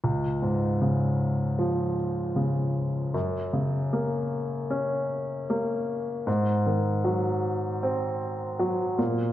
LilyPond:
\new Staff \with { instrumentName = "Grand piano" } { \clef bass \time 4/4 \key des \major \tempo 4 = 77 des,8 aes,8 des4 f4 des4 | ges,8 des8 bes4 des'4 bes4 | aes,8 ees8 ges4 c'4 ges8 bes,8 | }